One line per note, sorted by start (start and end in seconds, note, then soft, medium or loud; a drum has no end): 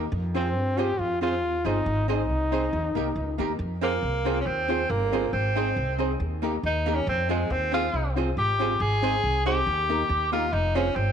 0.12 0.55 F2 loud
0.34 0.46 C4 medium
0.34 0.47 C4 medium
0.34 0.80 C4 medium
0.34 0.46 F4 medium
0.34 0.47 F4 medium
0.34 0.46 G#4 medium
0.34 0.47 G#4 medium
0.34 0.46 C5 medium
0.34 0.48 C5 medium
0.55 0.92 G2 loud
0.77 0.90 C4 medium
0.77 0.89 C4 medium
0.77 0.89 F4 medium
0.77 0.90 F4 medium
0.77 1.01 G4 loud
0.77 0.90 G#4 medium
0.77 0.91 G#4 medium
0.77 0.90 C5 loud
0.77 0.91 C5 loud
0.99 1.42 F2 medium
0.99 1.22 F4 loud
0.99 1.03 G#4 soft
0.99 1.03 C5 soft
1.21 1.33 C4 medium
1.21 1.33 F4 medium
1.21 1.34 F4 medium
1.21 1.68 F4 loud
1.21 1.33 G#4 medium
1.21 1.34 G#4 medium
1.21 1.33 C5 loud
1.21 1.34 C5 medium
1.42 1.62 D#2 medium
1.64 1.82 G1 medium
1.64 1.76 C4 medium
1.64 1.77 C4 medium
1.64 2.09 D#4 loud
1.64 1.76 F4 medium
1.64 1.77 F4 medium
1.64 1.76 G#4 medium
1.64 1.78 G#4 medium
1.64 1.77 C5 medium
1.64 1.78 C5 medium
1.86 2.29 G#1 loud
2.08 2.20 C4 medium
2.08 2.20 D#4 medium
2.08 2.21 D#4 medium
2.08 3.36 D#4 medium
2.08 2.20 G#4 medium
2.08 2.21 G#4 medium
2.08 2.20 C5 medium
2.08 2.21 C5 loud
2.29 2.66 C2 medium
2.51 2.63 C4 medium
2.51 2.64 C4 medium
2.51 2.63 D#4 medium
2.51 2.64 D#4 medium
2.51 2.63 G#4 medium
2.51 2.65 G#4 medium
2.51 2.64 C5 loud
2.51 2.65 C5 medium
2.73 2.92 D#2 loud
2.73 2.77 G4 soft
2.73 2.77 A#4 soft
2.73 muted hollow-body jazz guitar stroke soft
2.95 3.13 C2 medium
2.95 3.06 A#3 medium
2.95 3.07 A#3 medium
2.95 3.07 D#4 medium
2.95 3.08 D#4 medium
2.95 3.07 G4 medium
2.95 3.08 G4 medium
2.95 3.07 A#4 medium
2.95 3.08 A#4 medium
3.16 3.35 C#2 medium
3.38 3.56 D#2 medium
3.38 3.50 A#3 medium
3.38 3.51 A#3 medium
3.38 3.50 D#4 medium
3.38 3.51 D#4 medium
3.38 3.50 G4 medium
3.38 3.51 G4 medium
3.38 3.50 A#4 loud
3.38 3.52 A#4 medium
3.59 3.96 F2 loud
3.81 4.36 A#3 loud
3.81 3.94 C4 loud
3.81 3.93 C4 medium
3.81 3.94 F4 medium
3.81 3.94 G#4 medium
3.81 3.95 G#4 medium
3.81 3.94 C5 medium
3.81 3.95 C5 medium
4.03 4.40 C2 medium
4.25 4.38 C4 medium
4.25 4.37 C4 loud
4.25 4.37 F4 medium
4.25 4.38 F4 medium
4.25 4.37 G#4 medium
4.25 4.38 G#4 medium
4.25 4.37 C5 loud
4.25 4.38 C5 medium
4.41 4.48 C#4 medium
4.46 4.83 D#2 medium
4.46 4.92 C4 loud
4.46 4.51 G#4 soft
4.46 4.51 C5 soft
4.68 4.81 C4 medium
4.68 4.80 C4 medium
4.68 4.81 F4 medium
4.68 4.81 G#4 medium
4.68 4.82 G#4 medium
4.68 4.81 C5 loud
4.68 4.82 C5 medium
4.90 5.27 G1 medium
4.90 5.32 A#3 loud
4.90 muted hollow-body jazz guitar stroke soft
5.12 5.24 C4 medium
5.12 5.25 C4 medium
5.12 5.24 F4 medium
5.12 5.25 F4 medium
5.12 5.24 G#4 medium
5.12 5.25 G#4 medium
5.12 5.24 C5 medium
5.12 5.26 C5 medium
5.33 5.70 G#1 medium
5.33 5.95 C4 medium
5.55 5.67 C4 medium
5.55 5.68 C4 medium
5.55 5.67 D#4 medium
5.55 5.68 D#4 medium
5.55 5.67 G#4 medium
5.55 5.69 G#4 loud
5.55 5.68 C5 loud
5.55 5.69 C5 loud
5.76 6.13 C2 medium
5.98 6.11 C4 medium
5.98 6.11 D#4 medium
5.98 6.11 G#4 medium
5.98 6.12 G#4 medium
5.98 6.11 C5 loud
5.98 6.12 C5 medium
6.20 6.57 D#2 medium
6.20 6.25 G4 soft
6.20 6.25 A#4 soft
6.42 6.54 A#3 medium
6.42 6.55 A#3 medium
6.42 6.54 D#4 medium
6.42 6.55 D#4 medium
6.42 6.54 G4 medium
6.42 6.55 G4 medium
6.42 6.54 A#4 loud
6.42 6.56 A#4 medium
6.63 7.00 D#2 loud
6.63 6.96 D#4 medium
6.86 6.97 A#3 medium
6.86 6.98 A#3 loud
6.86 6.98 D#4 medium
6.86 6.99 D#4 medium
6.86 6.98 G4 medium
6.86 6.99 G4 medium
6.86 6.98 A#4 loud
6.86 6.99 A#4 loud
6.95 7.08 C#4 medium
7.07 7.44 F2 loud
7.07 7.29 C4 loud
7.29 7.53 G#3 medium
7.29 7.41 C4 medium
7.29 7.41 F4 medium
7.29 7.42 F4 medium
7.29 7.41 G#4 medium
7.29 7.42 G#4 medium
7.29 7.41 C5 loud
7.29 7.42 C5 medium
7.50 7.87 D#2 medium
7.50 7.73 C4 medium
7.72 7.85 C4 medium
7.72 7.84 C4 loud
7.72 7.84 F4 medium
7.72 7.85 F4 medium
7.72 8.14 F4 loud
7.72 7.84 G#4 medium
7.72 7.86 G#4 loud
7.72 7.85 C5 loud
7.72 7.86 C5 medium
7.93 8.30 C2 medium
7.93 7.98 G#4 soft
7.93 7.98 C5 soft
8.16 8.27 C4 medium
8.16 8.29 C4 medium
8.16 8.28 F4 medium
8.16 8.29 F4 medium
8.16 8.28 G#4 medium
8.16 8.29 G#4 medium
8.16 8.28 C5 medium
8.16 8.29 C5 medium
8.37 8.74 G#1 medium
8.37 8.83 G4 loud
8.37 muted hollow-body jazz guitar stroke soft
8.59 8.71 C4 medium
8.59 8.72 C4 medium
8.59 8.71 F4 medium
8.59 8.72 F4 medium
8.59 8.71 G#4 medium
8.59 8.73 G#4 medium
8.59 8.71 C5 medium
8.59 8.73 C5 medium
8.80 9.17 G#1 loud
8.80 9.46 G#4 loud
9.02 9.14 C4 medium
9.02 9.15 C4 medium
9.02 9.14 D#4 medium
9.02 9.15 D#4 medium
9.02 9.14 G#4 medium
9.02 9.15 G#4 loud
9.02 9.15 C5 loud
9.02 9.16 C5 loud
9.24 9.60 C2 medium
9.45 9.57 C4 medium
9.45 9.58 C4 medium
9.45 9.57 D#4 medium
9.45 9.58 D#4 medium
9.45 10.29 G4 loud
9.45 9.58 G#4 medium
9.45 9.59 G#4 medium
9.45 9.58 C5 loud
9.45 9.59 C5 loud
9.67 10.03 D#2 loud
9.89 10.01 A#3 medium
9.89 10.01 D#4 medium
9.89 10.02 D#4 medium
9.89 10.01 G4 medium
9.89 10.02 G4 medium
9.89 10.01 A#4 loud
9.89 10.02 A#4 medium
10.09 10.54 D#2 loud
10.32 10.44 A#3 medium
10.32 10.44 D#4 medium
10.32 10.45 D#4 medium
10.32 10.54 F4 medium
10.32 10.44 G4 medium
10.32 10.45 G4 loud
10.32 10.44 A#4 medium
10.32 10.45 A#4 medium
10.53 10.90 F1 medium
10.53 10.77 D#4 medium
10.75 10.87 C4 medium
10.75 10.88 C4 medium
10.75 10.97 C#4 medium
10.75 10.87 F4 medium
10.75 10.88 F4 medium
10.75 10.87 G#4 medium
10.75 10.88 G#4 loud
10.75 10.87 C5 medium
10.75 10.88 C5 medium
10.95 11.12 G1 loud
10.95 11.12 C4 medium